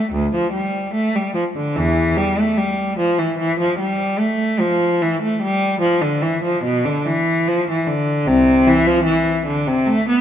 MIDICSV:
0, 0, Header, 1, 2, 480
1, 0, Start_track
1, 0, Tempo, 814111
1, 65, Time_signature, 4, 2, 24, 8
1, 3425, Tempo, 834492
1, 4385, Tempo, 801068
1, 6021, End_track
2, 0, Start_track
2, 0, Title_t, "Cello"
2, 0, Program_c, 0, 42
2, 0, Note_on_c, 0, 57, 53
2, 69, Note_off_c, 0, 57, 0
2, 75, Note_on_c, 0, 38, 64
2, 189, Note_off_c, 0, 38, 0
2, 204, Note_on_c, 0, 53, 54
2, 312, Note_on_c, 0, 55, 56
2, 313, Note_off_c, 0, 53, 0
2, 546, Note_off_c, 0, 55, 0
2, 555, Note_on_c, 0, 57, 62
2, 670, Note_off_c, 0, 57, 0
2, 683, Note_on_c, 0, 55, 54
2, 794, Note_on_c, 0, 53, 60
2, 797, Note_off_c, 0, 55, 0
2, 842, Note_off_c, 0, 53, 0
2, 923, Note_on_c, 0, 50, 53
2, 1035, Note_off_c, 0, 50, 0
2, 1040, Note_on_c, 0, 52, 63
2, 1043, Note_on_c, 0, 40, 55
2, 1263, Note_off_c, 0, 40, 0
2, 1278, Note_off_c, 0, 52, 0
2, 1280, Note_on_c, 0, 55, 64
2, 1398, Note_off_c, 0, 55, 0
2, 1415, Note_on_c, 0, 57, 61
2, 1520, Note_on_c, 0, 55, 57
2, 1527, Note_off_c, 0, 57, 0
2, 1759, Note_off_c, 0, 55, 0
2, 1761, Note_on_c, 0, 53, 59
2, 1876, Note_off_c, 0, 53, 0
2, 1881, Note_on_c, 0, 52, 51
2, 1992, Note_off_c, 0, 52, 0
2, 1999, Note_on_c, 0, 52, 63
2, 2114, Note_off_c, 0, 52, 0
2, 2122, Note_on_c, 0, 53, 57
2, 2236, Note_off_c, 0, 53, 0
2, 2236, Note_on_c, 0, 55, 65
2, 2471, Note_off_c, 0, 55, 0
2, 2472, Note_on_c, 0, 57, 67
2, 2711, Note_off_c, 0, 57, 0
2, 2714, Note_on_c, 0, 53, 63
2, 2950, Note_off_c, 0, 53, 0
2, 2961, Note_on_c, 0, 52, 56
2, 3073, Note_off_c, 0, 52, 0
2, 3079, Note_on_c, 0, 57, 60
2, 3190, Note_off_c, 0, 57, 0
2, 3200, Note_on_c, 0, 55, 76
2, 3424, Note_on_c, 0, 53, 62
2, 3427, Note_off_c, 0, 55, 0
2, 3540, Note_off_c, 0, 53, 0
2, 3547, Note_on_c, 0, 50, 57
2, 3663, Note_on_c, 0, 52, 54
2, 3664, Note_off_c, 0, 50, 0
2, 3784, Note_off_c, 0, 52, 0
2, 3790, Note_on_c, 0, 53, 54
2, 3903, Note_on_c, 0, 47, 67
2, 3908, Note_off_c, 0, 53, 0
2, 4026, Note_off_c, 0, 47, 0
2, 4027, Note_on_c, 0, 50, 58
2, 4147, Note_on_c, 0, 52, 67
2, 4149, Note_off_c, 0, 50, 0
2, 4383, Note_off_c, 0, 52, 0
2, 4386, Note_on_c, 0, 53, 65
2, 4504, Note_off_c, 0, 53, 0
2, 4520, Note_on_c, 0, 52, 58
2, 4622, Note_on_c, 0, 50, 65
2, 4628, Note_off_c, 0, 52, 0
2, 4860, Note_off_c, 0, 50, 0
2, 4861, Note_on_c, 0, 36, 53
2, 4862, Note_on_c, 0, 48, 73
2, 5083, Note_off_c, 0, 36, 0
2, 5100, Note_off_c, 0, 48, 0
2, 5101, Note_on_c, 0, 52, 73
2, 5220, Note_off_c, 0, 52, 0
2, 5220, Note_on_c, 0, 53, 71
2, 5327, Note_on_c, 0, 52, 65
2, 5339, Note_off_c, 0, 53, 0
2, 5568, Note_off_c, 0, 52, 0
2, 5577, Note_on_c, 0, 50, 65
2, 5696, Note_off_c, 0, 50, 0
2, 5704, Note_on_c, 0, 48, 68
2, 5819, Note_on_c, 0, 57, 79
2, 5823, Note_off_c, 0, 48, 0
2, 5942, Note_off_c, 0, 57, 0
2, 5950, Note_on_c, 0, 59, 64
2, 6021, Note_off_c, 0, 59, 0
2, 6021, End_track
0, 0, End_of_file